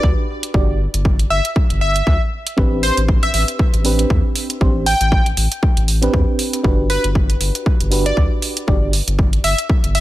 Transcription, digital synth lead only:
1.30 E5
1.81 E5
2.83 C5
3.23 E5
3.34 E5
4.86 G5
6.90 B4
8.06 D5
9.44 E5
9.95 E5

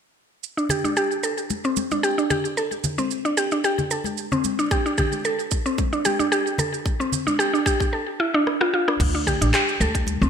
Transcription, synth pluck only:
0.57 D4
0.70 G4
0.84 D4
0.97 G4
1.23 A4
1.65 C4
1.92 D4
2.03 G4
2.18 D4
2.30 G4
2.57 A4
2.98 C4
3.25 D4
3.37 G4
3.52 D4
3.64 G4
3.91 A4
4.32 C4
4.59 D4
4.71 G4
4.86 D4
4.98 G4
5.25 A4
5.66 C4
5.93 D4
6.05 G4
6.19 D4
6.32 G4
6.59 A4
7.00 C4
7.27 D4
7.39 G4
7.54 D4
7.66 G4
7.93 A4
8.20 E4
8.34 D4
8.61 F4
8.74 F4
8.88 D4
9.15 D4
9.27 G4
9.41 D4
9.54 G4
9.81 A4
10.22 C4

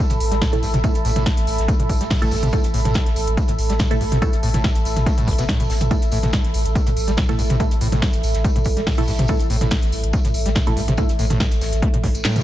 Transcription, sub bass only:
0.11 A1
0.20 A1
0.32 A1
0.53 A1
0.63 A1
0.74 A1
0.95 A1
1.05 A1
1.16 A1
1.37 A1
1.47 A1
1.58 A1
1.80 A1
1.89 A1
2.01 A1
2.22 A1
2.32 A1
2.43 A1
2.64 A1
2.74 A1
2.85 A1
3.06 A1
3.16 A1
3.27 A1
3.49 A1
3.59 A1
3.70 A1
3.91 A1
4.01 A1
4.12 A1
4.33 A1
4.43 A1
4.54 A1
4.75 A1
4.85 A1
4.97 A1
5.18 A1
5.28 A1
5.39 A1
5.60 A1
5.70 A1
5.81 A1
6.02 A1
6.12 A1
6.23 A1
6.45 A1
6.54 A1
6.66 A1
6.87 A1
6.97 A1
7.08 A1
7.29 A1
7.39 A1
7.50 A1
7.71 A1
7.81 A1
7.92 A1
8.13 A1
8.23 A1
8.35 A1
8.56 A1
8.66 A1
8.77 A1
8.98 A1
9.08 A1
9.19 A1
9.40 A1
9.50 A1
9.61 A1
9.82 A1
9.92 A1
10.03 A1
10.25 A1
10.34 A1
10.46 A1
10.67 A1
10.77 A1
10.88 A1
11.09 A1
11.19 A1
11.30 A1
11.51 A1
11.61 A1
11.72 A1
11.94 A1
12.04 A1
12.15 A1

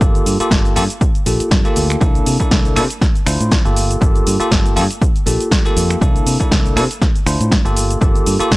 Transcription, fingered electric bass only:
0.01 G1
0.26 G2
0.40 muted fingered electric bass stroke
0.51 G1
0.77 G2
1.27 A#1
1.41 muted fingered electric bass stroke
1.51 G2
1.77 D2
2.02 C2
2.27 C3
2.40 muted fingered electric bass stroke
2.51 C2
2.77 C3
3.27 D2
3.40 A2
3.65 G1
4.02 G1
4.27 G2
4.41 muted fingered electric bass stroke
4.52 G1
4.77 G2
5.26 A#1
5.77 F2
6.01 C2
6.26 C3
6.41 muted fingered electric bass stroke
6.51 C2
6.76 C3
7.26 D2
7.40 A2
7.65 G1
8.01 G1
8.27 G2
8.40 muted fingered electric bass stroke
8.52 G1

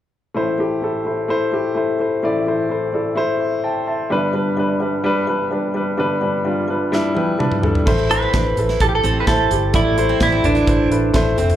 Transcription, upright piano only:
0.34 A1 A2 A3 E4 C5
0.58 A3 E4 G4
0.82 A3 E4 A4
1.05 A3 E4 C5
1.28 A3 E4 C5
1.52 A3 E4 G4
1.75 A3 E4 C5
1.99 A3 E4 C5
2.23 A1 A2 A3 E4 D5
2.46 A3 E4 C5
2.69 A3 E4 C5
2.93 A3 E4 A4 D5
3.15 A3 E4 C5 E5
3.40 C6
3.64 G5 A5
3.87 E5 A5
4.10 G1 G2 G3 D4 B4
4.33 G3 D4 B4
4.57 G3 D4 B4
4.80 G3 D4 B4
5.04 G3 D4 B4
5.27 G3 D4 B4
5.51 G3 D4 B4
5.74 G3 D4 B4
5.98 G1 G2 G3 D4 B4
6.21 G3 D4 B4
6.45 G3 D4 F4
6.68 G3 D4 B4
6.92 G3 D4 E4
7.15 G3 D4 B4 G5
7.38 G3 D4 B4 A5
7.62 G3 D4 A4
7.86 A2 A3 E4 C5
8.10 A3 E4 C5
8.33 A3 E4 C5
8.57 A3 E4 A4
8.80 A3 E4 G4
9.03 A3 E4 C5
9.27 A3 E4 C5
9.50 A3 E4 G4
9.73 A2 A3 E4 D5
9.97 A3 E4 C5
10.20 A3 E4 D5
10.44 A3 E4 B4
10.67 A3 E4 C5
10.90 A3 E4 B4
11.14 A3 E4 C5
11.37 A3 E4 C5

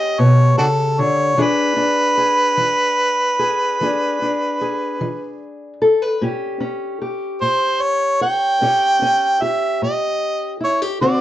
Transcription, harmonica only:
Already playing: D#5
0.19 C#5
0.58 D4 F#4 A4
1.01 C#5
1.42 B4
7.41 C5
7.82 C#5
8.22 G5
9.42 E5
9.83 D#5
10.64 C#5
11.02 D5

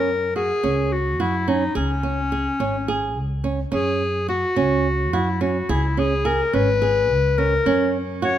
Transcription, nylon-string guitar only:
0.36 F#4
0.63 C#4
1.20 F#4
1.48 C#4
1.75 G#4
2.03 C#4
2.32 G#4
2.60 C#4
2.88 G#4
3.44 C#4
3.72 C#4
4.28 F#4
4.56 C#4
5.13 F#4
5.41 C#4
5.69 G#4
5.97 C#4
6.25 G#4
6.53 C#4
6.82 G#4
7.38 C#4
7.66 C#4
8.22 F#4

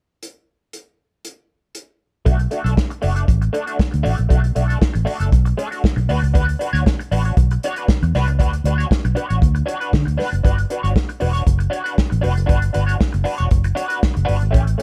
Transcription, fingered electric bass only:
2.26 B1
2.65 B1
3.04 F#1
3.29 A1
3.94 D2
4.05 A1
4.19 A#1
4.31 B1
4.56 B1
4.95 A1
5.20 F#1
5.33 B1
5.97 B1
6.09 D2
6.22 C#2
6.35 D2
6.73 D2
7.12 A1
7.37 B1
8.03 E2
8.14 C2
8.27 C#2
8.40 D2
8.64 D2
9.05 B1
9.30 A1
9.43 D2
9.94 D3
10.07 D2
10.32 F#1
10.45 G1
10.84 G1
11.22 E1
11.47 F#1
12.12 A1
12.24 F1
12.37 F#1
12.50 G1
12.75 G1
13.14 F#1
13.40 E1
13.52 F#1
14.17 F#1
14.29 G1
14.42 G#1
14.55 A1

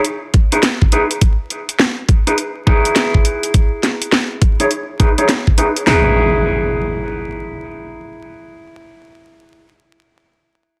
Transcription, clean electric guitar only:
0.52 D#4 E4 G#4 B4
0.92 D#4 E4 G#4 B4
2.27 D#4 E4 G#4 B4
2.67 D#4 E4 G#4 B4
4.60 D#4 E4 G#4 C#5
4.99 D#4 E4 G#4 B4
5.18 D#4 E4 G#4 C#5
5.58 D#4 E4 G#4 B4
5.86 D#4 E4 G#4 B4

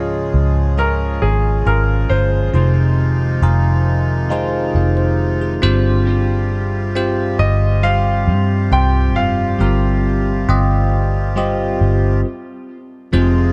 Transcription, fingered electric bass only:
Already playing: C#2
0.34 C#2
1.22 G#1
1.66 G#1
2.10 G1
2.54 F1
3.42 F1
4.75 F1
5.63 G1
7.39 G1
8.27 G2
8.71 C2
9.16 F1
9.61 G1
10.49 G1
11.81 G1
13.13 F1

